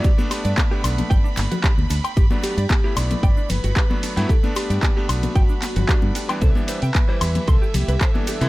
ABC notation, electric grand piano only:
X:1
M:4/4
L:1/16
Q:"Swing 16ths" 1/4=113
K:G
V:1 name="Electric grand piano"
z [A,B,D]4 [A,B,D]8- [A,B,D]3- | [A,B,D] [F,A,B,D]2 z2 [A,B,E]8 [F,A,B,D]2 [F,A,B,E] | z [A,B,D]4 [A,B,D]6- [A,B,D] [A,B,D]3 [E,G,B,D]- | [E,G,B,D] [E,G,B,D]2 z2 [E,G,E]8 [E,G,B,D]2 [E,G,B,E] |]